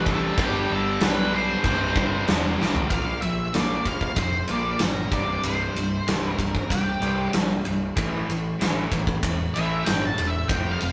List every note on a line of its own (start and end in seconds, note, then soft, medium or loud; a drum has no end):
0.00 0.29 A1 loud
0.00 0.36 C2 medium
0.00 0.35 G2 medium
0.00 0.37 C3 medium
0.06 0.36 C2 medium
0.06 0.36 G2 medium
0.06 0.36 C3 loud
0.06 0.37 A4 medium
0.06 kick medium
0.10 0.41 A5 medium
0.38 0.65 G1 medium
0.38 0.99 G2 loud
0.38 0.99 D3 loud
0.38 1.00 G3 loud
0.38 kick loud
0.38 crash medium
0.42 0.70 G4 medium
0.42 0.73 G5 medium
0.70 0.97 G1 medium
0.70 1.00 A4 medium
0.70 1.01 A5 medium
1.00 1.55 B1 medium
1.00 1.30 G2 medium
1.00 1.31 D3 medium
1.00 1.31 G3 medium
1.00 snare loud
1.00 crash medium
1.04 1.32 B4 medium
1.04 1.35 B5 medium
1.31 1.62 G2 medium
1.31 1.62 D3 loud
1.31 1.63 G3 loud
1.31 2.25 C5 medium
1.35 1.64 G2 medium
1.35 2.25 C6 loud
1.62 1.91 C1 loud
1.62 2.25 C2 loud
1.62 2.26 G2 loud
1.62 2.26 C3 loud
1.62 kick medium
1.62 crash medium
1.96 2.23 G1 medium
1.96 kick medium
2.26 2.55 E1 loud
2.26 2.58 C2 medium
2.26 2.58 G2 medium
2.26 2.59 C3 loud
2.26 snare loud
2.26 crash medium
2.59 2.87 A1 medium
2.59 2.89 C2 medium
2.59 2.89 G2 medium
2.59 2.90 C3 medium
2.59 snare medium
2.75 floor tom loud
2.90 3.15 A#1 medium
2.90 3.20 A#2 medium
2.90 3.20 F3 medium
2.90 3.20 A#3 medium
2.90 3.21 F5 medium
2.90 kick medium
2.90 ride medium
3.21 3.47 A#1 medium
3.21 3.51 A#2 medium
3.21 3.51 F3 medium
3.21 3.51 E5 medium
3.21 ride medium
3.54 3.80 A#1 medium
3.54 3.84 A#2 medium
3.54 3.84 F3 medium
3.54 3.84 A#3 medium
3.54 3.87 D5 medium
3.54 snare medium
3.54 ride medium
3.85 4.10 A#1 medium
3.85 4.14 A#2 medium
3.85 4.15 F3 medium
3.85 4.20 F5 medium
3.85 kick medium
3.85 ride medium
4.01 kick medium
4.16 4.42 F1 medium
4.16 4.46 A#2 medium
4.16 4.46 F3 medium
4.16 4.51 C5 loud
4.16 kick loud
4.16 ride medium
4.48 4.74 A#1 medium
4.48 4.78 A#2 medium
4.48 4.78 F3 loud
4.48 4.79 A#3 loud
4.48 4.83 D5 medium
4.48 ride medium
4.79 5.06 G1 medium
4.79 5.08 A#2 medium
4.79 5.09 F3 medium
4.79 5.13 A#4 medium
4.79 snare loud
4.79 ride medium
5.11 5.37 C1 medium
5.11 5.42 C2 medium
5.11 5.42 G2 medium
5.11 5.42 C3 medium
5.11 5.45 D5 medium
5.11 kick medium
5.11 ride medium
5.43 5.68 C1 medium
5.43 5.73 C2 medium
5.43 5.74 G2 medium
5.43 5.74 C3 loud
5.43 6.33 C5 medium
5.43 ride medium
5.75 6.00 C1 medium
5.75 6.04 C2 medium
5.75 6.04 G2 medium
5.75 ride medium
6.07 6.33 C1 medium
6.07 6.36 C2 medium
6.07 6.37 G2 medium
6.07 6.37 C3 loud
6.07 snare loud
6.07 ride medium
6.33 6.74 A#4 medium
6.37 6.63 C1 medium
6.37 6.67 C2 medium
6.37 6.67 G2 medium
6.37 kick medium
6.37 ride medium
6.55 kick medium
6.69 6.95 C1 medium
6.69 6.98 C2 medium
6.69 6.99 G2 medium
6.69 7.30 G4 medium
6.69 kick medium
6.69 ride medium
7.01 7.31 C2 medium
7.01 7.26 C2 medium
7.01 7.31 G2 medium
7.01 7.32 C3 medium
7.01 ride medium
7.33 7.59 A#1 medium
7.33 7.62 C2 medium
7.33 7.62 G2 medium
7.33 snare loud
7.33 ride medium
7.65 7.90 C1 medium
7.65 7.94 C2 medium
7.65 7.94 G2 medium
7.65 ride medium
7.95 8.21 A1 medium
7.95 8.26 A2 medium
7.95 8.26 E3 medium
7.95 8.26 A3 loud
7.95 kick loud
7.95 ride medium
8.29 8.53 A1 medium
8.29 8.57 A2 medium
8.29 8.57 E3 medium
8.29 ride medium
8.59 8.85 A1 medium
8.59 8.89 A2 medium
8.59 8.90 E3 loud
8.59 8.90 A3 loud
8.59 snare loud
8.59 ride medium
8.92 9.16 A1 medium
8.92 9.20 A2 medium
8.92 9.21 E3 medium
8.92 kick medium
8.92 ride medium
9.07 kick medium
9.23 9.47 E1 medium
9.23 9.52 A2 medium
9.23 9.52 E3 medium
9.23 kick medium
9.23 ride medium
9.54 9.80 A1 medium
9.54 9.85 A2 medium
9.54 9.86 E3 loud
9.54 9.86 A3 loud
9.54 9.87 E5 medium
9.54 ride medium
9.85 10.11 G1 loud
9.85 10.16 A2 medium
9.85 10.16 E3 medium
9.85 10.05 G5 medium
9.85 snare loud
9.85 ride loud
10.05 10.28 A5 loud
10.18 10.42 E1 medium
10.18 10.47 A2 medium
10.18 10.47 E3 medium
10.18 ride medium
10.27 10.50 E5 medium
10.48 10.74 F1 loud
10.48 10.80 F2 medium
10.48 10.80 C3 loud
10.48 10.80 F3 loud
10.48 10.71 G5 loud
10.48 kick loud
10.48 ride medium
10.71 10.92 F5 medium
10.80 10.92 F1 medium
10.80 10.92 F2 medium
10.80 10.92 C3 medium
10.80 ride medium